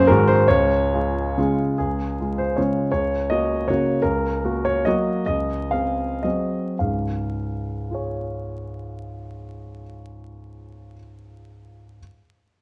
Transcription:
Already playing: F#3 A#3 C5
0.07 G#2 D#3 G#3 F#4 A#4
0.28 C5
0.48 C#2 C#5
0.94 G#3 F4
1.38 C#3 G#3 F4
1.78 C#2 G#4
2.20 G#3 F4
2.38 C5
2.56 C#3 G#3 F4 C#5
2.92 C#2 C#5
3.30 A#3 F#4 D#5
3.68 C#3 A#3 F#4 C#5
4.02 C#2 A#4
4.45 A#3 F#4
4.65 C#5
4.85 F#3 A#3 F#4 D#5
5.26 C#2 D#5
5.71 C4 G#4 F5
6.23 F#3 C4 G#4 D#5
6.79 C#2 G#2 F5
7.90 F4 G#4
7.94 C#5

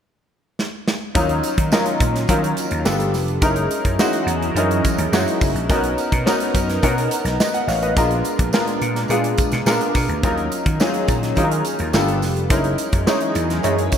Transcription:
0.59 snare
0.88 snare
1.15 D#2 D#3 F#3 A#3 C#4 D#4 F4 A#4, kick, closed hi-hat, tambourine
1.29 closed hi-hat
1.43 closed hi-hat, tambourine
1.58 D#3, kick, closed hi-hat
1.72 F#3 C#4 D#4 F4 A#4, snare, tambourine
1.86 closed hi-hat
2.00 A#2, kick, closed hi-hat
2.16 snare, closed hi-hat
2.27 D#3 F#3 C#4 D#4 F4 A#4, kick, closed hi-hat, tambourine
2.44 closed hi-hat
2.57 closed hi-hat, tambourine
2.71 D#2, closed hi-hat
2.85 G1 G3 B3 D4 F4 A4, snare, tambourine
3.00 closed hi-hat
3.14 F1, snare, open hi-hat, tambourine
3.28 closed hi-hat
3.41 F#1 E3 F#3 G#3 C#4 D#4 E4 G#4 A#4 D#5, kick, closed hi-hat, tambourine
3.56 closed hi-hat
3.71 closed hi-hat, tambourine
3.85 F#2, kick, closed hi-hat
3.99 G#3 C#4 D#4 E4 F#4, snare, tambourine
4.13 closed hi-hat
4.26 E2, closed hi-hat
4.43 closed hi-hat
4.55 F#2 G#3 C#4 D#4 E4 A#4, closed hi-hat
4.71 closed hi-hat
4.85 kick, closed hi-hat, tambourine
4.98 D#2, closed hi-hat
5.12 F#2 G#3 C#4 D#4 E4 F#4, snare, tambourine
5.28 closed hi-hat
5.41 F#1, kick, open hi-hat, tambourine
5.55 A#1, closed hi-hat
5.69 B1 B3 C#4 D#4 F#4 A#4, kick, closed hi-hat, tambourine
5.84 closed hi-hat
5.98 closed hi-hat, tambourine
6.12 B2, kick, closed hi-hat
6.26 B3 C#4 D#4 F#4 A#4, snare, tambourine
6.40 closed hi-hat
6.54 F#2, kick, closed hi-hat, tambourine
6.69 snare, closed hi-hat
6.82 B2 B3 C#4 D#4 F#4 A#4, kick, closed hi-hat, tambourine
6.98 closed hi-hat
7.11 closed hi-hat, tambourine
7.25 B1, snare, closed hi-hat
7.40 B4 D#5, snare, tambourine
7.54 D#5 F#5, closed hi-hat
7.67 A1 C#5 F5, snare, open hi-hat, tambourine
7.83 B4 D#5, closed hi-hat
7.96 A#1 A#2 G#3 B3 D4 F4 A#4, kick, closed hi-hat, tambourine
8.11 closed hi-hat
8.25 closed hi-hat, tambourine
8.39 A#1, kick, closed hi-hat
8.53 G#3 B3 D4 F4 A#4, snare, tambourine
8.67 closed hi-hat
8.81 A#2, closed hi-hat
8.96 snare, closed hi-hat
9.08 A#2 G#3 B3 D4 F4 G#4, closed hi-hat, tambourine
9.24 closed hi-hat
9.38 kick, closed hi-hat, tambourine
9.52 B2, snare, closed hi-hat
9.66 A#2 G#3 B3 D4 F4 A#4, snare, tambourine
9.81 closed hi-hat
9.95 B2, kick, snare, open hi-hat, tambourine
10.09 D2, closed hi-hat
10.23 D#2 D#3 F#3 A#3 C#4 D#4 F4 A#4, kick, closed hi-hat, tambourine
10.38 closed hi-hat
10.52 closed hi-hat, tambourine
10.66 D#3, kick, closed hi-hat
10.80 F#3 C#4 D#4 F4 G#4, snare, tambourine
10.94 closed hi-hat
11.08 A#2, kick, closed hi-hat, tambourine
11.23 snare, closed hi-hat
11.35 D#3 F#3 C#4 D#4 F4 G#4, kick, closed hi-hat, tambourine
11.44 A#4
11.51 closed hi-hat
11.65 closed hi-hat, tambourine
11.79 D#2, closed hi-hat
11.93 G1 G3 A#3 D4 F4 A4, snare, tambourine
12.00 B3
12.08 closed hi-hat
12.22 F1, snare, open hi-hat, tambourine
12.37 closed hi-hat
12.50 F#1 E3 F#3 G#3 C#4 D#4 E4 G#4 A#4 D#5, kick, closed hi-hat, tambourine
12.64 closed hi-hat
12.78 closed hi-hat, tambourine
12.93 F#2, kick, closed hi-hat
13.06 G#3 C#4 D#4 E4 C#5, snare, tambourine
13.21 closed hi-hat
13.35 E2, closed hi-hat, tambourine
13.50 snare, closed hi-hat
13.63 F#2 G#3 C#4 D#4 E4 C#5, closed hi-hat, tambourine
13.79 closed hi-hat
13.92 kick, closed hi-hat, tambourine

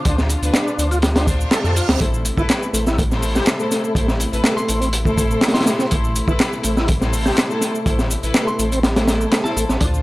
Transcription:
Already playing: B2 D3 D4 F4
0.05 D2 D4 F4 C5, kick, closed hi-hat, shaker
0.18 snare, shaker
0.29 closed hi-hat, shaker
0.42 D2 D4 F4 B4, closed hi-hat, shaker
0.54 D4, snare, clap, closed hi-hat, shaker
0.68 shaker
0.78 D2 D4 F4 C5, closed hi-hat, shaker
0.91 F4, closed hi-hat, shaker
1.02 snare, closed hi-hat, reverse cymbal, shaker
1.16 D4 F4 C5, snare, closed hi-hat, shaker
1.27 D4 F4 C5, kick, closed hi-hat, shaker
1.41 shaker
1.51 A4, snare, clap, closed hi-hat, shaker
1.64 F2 D4 F4 A4 C5, snare, shaker
1.76 F4, closed hi-hat, shaker
1.89 D2 C4, snare, closed hi-hat, shaker
2.00 A1 C3 A3 E4 A4 C5, kick, closed hi-hat, shaker
2.14 shaker
2.25 closed hi-hat, shaker
2.37 A1 E4 A4 B4, kick, shaker
2.49 snare, clap, closed hi-hat, shaker
2.63 shaker
2.73 A1 A3 E4 A4 C5, closed hi-hat, shaker
2.87 E4, snare, shaker
2.98 A3, kick, closed hi-hat, shaker
3.11 E4 A4 C5, snare, shaker
3.22 open hi-hat, shaker
3.35 G4, snare, shaker
3.46 snare, clap, closed hi-hat, shaker
3.59 A3 E4 A4 C5, shaker
3.71 snare, closed hi-hat, shaker
3.84 shaker
3.95 A1 E4 A4 C5, kick, closed hi-hat, shaker
4.08 snare, shaker
4.20 closed hi-hat, shaker
4.33 A1 E4 A4 B4, closed hi-hat, shaker
4.44 A3, snare, clap, closed hi-hat, shaker
4.57 C6, shaker
4.68 A1 E4 A4 C5, closed hi-hat, shaker
4.81 C4, closed hi-hat, shaker
4.93 closed hi-hat, shaker
5.05 A3 E4 A4 C5, kick, shaker
5.18 kick, closed hi-hat, shaker
5.31 shaker
5.41 snare, clap, closed hi-hat, shaker
5.48 snare, closed hi-hat
5.54 E4 A4 C5 C6, snare, closed hi-hat, shaker
5.61 snare, closed hi-hat
5.66 A3, snare, closed hi-hat, shaker
5.79 C4, snare, shaker
5.91 A1 A3 E4 A4 C5, kick, closed hi-hat, shaker
6.04 shaker
6.16 closed hi-hat, shaker
6.28 A1 E4 A4 B4, kick, shaker
6.40 snare, clap, closed hi-hat, shaker
6.53 shaker
6.63 A1 A3 E4 A4 C5, closed hi-hat, shaker
6.77 E4, snare, shaker
6.88 A3, kick, closed hi-hat, shaker
7.01 E4 A4 C5, snare, shaker
7.13 open hi-hat, shaker
7.25 G4, snare, shaker
7.37 snare, clap, closed hi-hat, shaker
7.50 A3 E4 A4 C5, shaker
7.61 snare, closed hi-hat, shaker
7.75 shaker
7.86 A1 E4 A4 C5, kick, closed hi-hat, shaker
7.99 snare, shaker
8.11 closed hi-hat, shaker
8.23 A1 E4 A4 B4, closed hi-hat, shaker
8.34 A3, snare, clap, closed hi-hat, shaker
8.47 C6, shaker
8.59 A1 E4 A4 C5, closed hi-hat, shaker
8.72 C4, closed hi-hat, shaker
8.83 snare, closed hi-hat, shaker
8.96 A3 E4 A4 C5, snare, closed hi-hat, shaker
9.08 E4 A4 C5, snare, closed hi-hat, shaker
9.21 shaker
9.32 snare, clap, closed hi-hat, shaker
9.44 E4 A4 C5 A5, snare, shaker
9.56 A1 A3, closed hi-hat, shaker
9.69 A1 C4, snare, shaker
9.81 D2 D3 C4 D4 F4 C5, kick, closed hi-hat, shaker
9.94 shaker

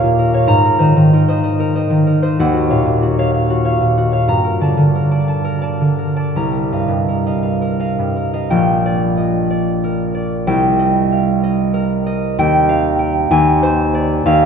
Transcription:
Already playing: D#2 A#4 C#5 F5 A#5
0.03 A#2
0.19 A#4
0.34 C#5 F5
0.47 G#2 A#5
0.65 A#4
0.79 D#3 C5 D#5
0.96 D#3
1.13 D#4 A#4
1.28 C5 D#5
1.44 D#5
1.60 A#4
1.75 C5 D#5
1.90 D#3
2.07 A#4
2.22 C5 D#5
2.39 D#2 F#5
2.54 F#4
2.70 A#2 C#5 F5
2.86 A#2
3.02 F#4
3.18 C#5 F5
3.34 F5
3.50 F#4
3.65 C#5 F5
3.81 A#2
3.98 F#4
4.12 C#5 F5
4.28 G2 A#5
4.44 A#4
4.60 D3 D5 A5
4.77 D3
4.95 A#4
5.11 D5 A5
5.28 A5
5.44 A#4
5.61 D5 A5
5.81 D3
5.98 A#4
6.16 D5 A5
6.36 C2 A#5
6.52 A#4
6.72 G2 D#5 F5
6.88 G2
7.08 A#4
7.26 D#5 F5
7.43 F5
7.62 A#4
7.79 D#5 F5
7.99 G2
8.16 A#4
8.33 D#5 F5
8.50 A#1 G5
8.86 D5
9.17 D#5
9.50 D5
9.84 A#4
10.15 D5
10.47 C2 G5
10.79 D#5
11.12 F5
11.44 D#5
11.74 A#4
12.06 D#5
12.38 D#2 G5
12.69 F5
12.99 G5
13.31 D#2 G#5
13.63 C5
13.94 D5
14.25 D#2 F5

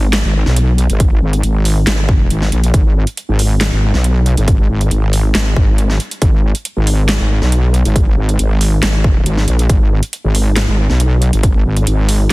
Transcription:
Already playing: G#1
0.13 snare, clap, closed hi-hat
0.24 G#1
0.46 B1, snare
0.56 closed hi-hat
0.78 closed hi-hat
0.90 G#1, closed hi-hat
1.00 kick, closed hi-hat
1.11 G#1
1.22 G#1
1.33 closed hi-hat
1.43 G#1, closed hi-hat
1.65 open hi-hat
1.87 G#1, snare, clap, closed hi-hat
2.09 kick
2.30 G#1, closed hi-hat
2.42 snare
2.52 A#1, closed hi-hat
2.64 closed hi-hat
2.74 G#1, kick, closed hi-hat
3.07 closed hi-hat
3.17 closed hi-hat
3.29 G#1
3.39 open hi-hat
3.61 snare, clap, closed hi-hat
3.72 G#1
3.94 B1, snare
4.04 closed hi-hat
4.26 closed hi-hat
4.37 G#1, closed hi-hat
4.48 kick, closed hi-hat
4.59 G#1
4.70 G#1
4.81 closed hi-hat
4.91 G#1, closed hi-hat
5.13 open hi-hat
5.35 G#1, snare, clap, closed hi-hat
5.56 G#1, kick
5.78 closed hi-hat
5.90 snare
6.00 closed hi-hat
6.11 closed hi-hat
6.22 G#1, kick, closed hi-hat
6.55 closed hi-hat
6.65 closed hi-hat
6.77 G#1
6.87 open hi-hat
7.09 snare, clap, closed hi-hat
7.20 G#1
7.42 B1, snare
7.52 closed hi-hat
7.74 closed hi-hat
7.85 G#1, closed hi-hat
7.96 kick, closed hi-hat
8.07 G#1
8.17 G#1
8.29 closed hi-hat
8.39 G#1, closed hi-hat
8.61 open hi-hat
8.82 G#1, snare, clap, closed hi-hat
9.04 kick
9.26 G#1, closed hi-hat
9.37 snare
9.48 A#1, closed hi-hat
9.59 closed hi-hat
9.70 G#1, kick, closed hi-hat
10.03 closed hi-hat
10.13 closed hi-hat
10.24 G#1
10.35 open hi-hat
10.56 snare, clap, closed hi-hat
10.68 G#1
10.90 B1, snare
11.00 closed hi-hat
11.22 closed hi-hat
11.33 G#1, closed hi-hat
11.43 kick, closed hi-hat
11.55 G#1
11.65 G#1
11.77 closed hi-hat
11.87 G#1, closed hi-hat
12.09 open hi-hat

